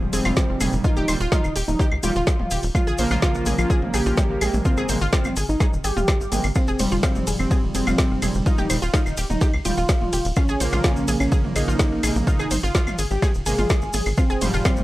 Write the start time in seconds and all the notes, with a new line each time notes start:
Already playing: G#2 F3 G3
0.01 D#1
0.13 F1 C4 G#4 G#5, open hi-hat, shaker
0.25 F1 F4 F5, mid tom, claves, shaker
0.36 kick, snare, shaker
0.49 F1
0.60 F1 A#2 D#3 G3 G#4 G#5, mid tom, open hi-hat, claves, shaker
0.73 F1, shaker
0.84 D#4 F4 F5, kick, shaker
0.96 D#1 G4 G5, mid tom, shaker
1.08 D#1 A#2 D#3 G3 C5 C6, open hi-hat, claves, shaker
1.20 D#1 F4 F5, shaker
1.32 D#4 F4 F5, kick, snare, mid tom, shaker
1.44 D#1, claves, shaker
1.56 D#1 G4 G5, open hi-hat, shaker
1.68 D#1 D#4, mid tom, shaker
1.79 G4 G5, kick, snare, shaker
1.92 C#2, claves
2.03 D#1 A#2 D#3 G3 F4 G4 G5, mid tom, open hi-hat, shaker
2.15 D#1 F4 F5, shaker
2.27 kick, snare, claves, shaker
2.39 D#1, mid tom
2.51 D#1 G4 G5, open hi-hat, shaker
2.63 D#1, open hi-hat, shaker
2.75 F4 F5, kick, mid tom, claves, shaker
2.87 A#1 G#4 G#5, shaker
2.98 A#1 C#3 F3 A#3 C5 C6, open hi-hat, shaker
3.11 A#1 F4 F5, mid tom, claves, shaker
3.22 F4 F5, kick, snare, shaker
3.35 A#1, shaker
3.46 A#1 G#4 G#5, mid tom, open hi-hat, shaker
3.58 A#1 F4, claves, shaker
3.70 G#4 G#5, kick, shaker
3.82 G#1, mid tom
3.94 A#1 G4 G#4 G#5, open hi-hat, claves, shaker
4.06 A#1 F4 F5, shaker
4.17 kick, snare, mid tom, shaker
4.30 A#1
4.41 A#1 C3 G#3 A#3 G#4 G#5, open hi-hat, claves, shaker
4.54 A#1, mid tom, shaker
4.65 C4 F4 F5, kick, shaker
4.77 G#1 G#4 G#5, claves, shaker
4.89 G#1 C3 G#3 A#3 C5 C6, mid tom, open hi-hat, shaker
5.01 G#1 F4 F5, shaker
5.13 C4 F4 F5, kick, snare, shaker
5.24 G#1, mid tom, claves, shaker
5.36 G#1 G#4 G#5, open hi-hat, shaker
5.49 G#1 D#4, shaker
5.60 G#4 G#5, kick, snare, mid tom, claves, shaker
5.73 D#1, shaker
5.84 G#1 G4 G#4 G#5, open hi-hat, shaker
5.97 D#1 F4 F5, mid tom, shaker
6.08 kick, snare, claves, shaker
6.20 G#1, shaker
6.32 G#1 C3 G#3 A#3 G#4 G#5, mid tom, open hi-hat, shaker
6.44 G#1, open hi-hat, claves, shaker
6.55 C4 F4 F5, kick, ride, claves, shaker
6.67 F1 G#4 G#5, shaker
6.79 F1 G#2 F3 G3 C5 C6, mid tom, open hi-hat, ride, shaker
6.91 F1 F4 F5, shaker
7.03 C4 F4 F5, kick, snare, ride, claves, shaker
7.15 F1, mid tom, shaker
7.27 F1 G#4 G#5, open hi-hat, ride, shaker
7.39 F1 C4, claves, shaker
7.51 G#4 G#5, kick, mid tom, ride, shaker
7.63 D#1
7.75 F1 C4 G#4 G#5, open hi-hat, ride, shaker
7.87 F1 F4 F5, mid tom, claves, shaker
7.98 kick, snare, ride, shaker
8.11 F1
8.22 F1 A#2 D#3 G3 G#4 G#5, mid tom, open hi-hat, ride, claves, shaker
8.34 F1, shaker
8.46 D#4 F4 F5, kick, ride, shaker
8.58 D#1 G4 G5, mid tom, shaker
8.70 D#1 A#2 D#3 G3 C5 C6, open hi-hat, ride, claves, shaker
8.82 D#1 F4 F5, shaker
8.94 D#4 F4 F5, kick, snare, mid tom, ride, shaker
9.06 D#1, claves, shaker
9.17 D#1 G4 G5, open hi-hat, ride, shaker
9.30 D#1 D#4, mid tom, shaker
9.41 G4 G5, kick, snare, ride, shaker
9.54 C#2, claves
9.65 D#1 A#2 D#3 G3 F4 G4 G5, mid tom, open hi-hat, ride, shaker
9.77 D#1 F4 F5, shaker
9.89 kick, snare, ride, claves, shaker
10.01 D#1, mid tom
10.13 D#1 G4 G5, open hi-hat, ride, shaker
10.25 D#1, open hi-hat, shaker
10.36 C#4 F4 F5, kick, mid tom, ride, claves, shaker
10.48 A#1 G#4 G#5, shaker
10.60 A#1 C#3 F3 A#3 C5 C6, open hi-hat, ride, shaker
10.72 A#1 F4 F5, mid tom, claves, shaker
10.84 C#4 F4 F5, kick, snare, ride, shaker
10.96 A#1, shaker
11.08 A#1 G#4 G#5, mid tom, open hi-hat, ride, shaker
11.20 A#1 C#4, claves, shaker
11.32 G#4 G#5, kick, ride, shaker
11.44 G#1, mid tom
11.56 A#1 D#4 G#4 G#5, open hi-hat, ride, claves, shaker
11.68 A#1 F4 F5, shaker
11.79 kick, snare, mid tom, ride, shaker
11.92 A#1
12.03 A#1 C3 G#3 A#3 G#4 G#5, open hi-hat, ride, claves, shaker
12.16 A#1, mid tom, shaker
12.27 D#4 F4 F5, kick, ride, shaker
12.39 G#1 G#4 G#5, claves, shaker
12.51 G#1 C5 C6, mid tom, open hi-hat, ride, shaker
12.63 G#1 F4 F5, shaker
12.75 F4 F5, kick, snare, ride, shaker
12.87 G#1, mid tom, claves, shaker
12.98 G#1 G#4 G#5, open hi-hat, ride, shaker
13.10 G#1 G4, shaker
13.22 G#4 G#5, kick, snare, mid tom, ride, claves, shaker
13.34 D#1, shaker
13.46 G#1 C3 G#3 A#3 G#4 G#5, open hi-hat, ride, shaker
13.58 G#1 F4 F5, mid tom, shaker
13.69 kick, snare, ride, claves, shaker
13.82 G#1, shaker
13.93 G#1 G#4 G#5, mid tom, open hi-hat, ride, shaker
14.06 G#1, open hi-hat, claves, shaker
14.17 C4 F4 F5, kick, ride, claves, shaker
14.30 F1 G#4 G#5, shaker
14.41 F1 G#2 F3 G3 C5 C6, mid tom, open hi-hat, ride, shaker
14.54 F1 F4 F5, shaker
14.65 C4 F4 F5, kick, snare, ride, claves, shaker
14.77 F1, mid tom, shaker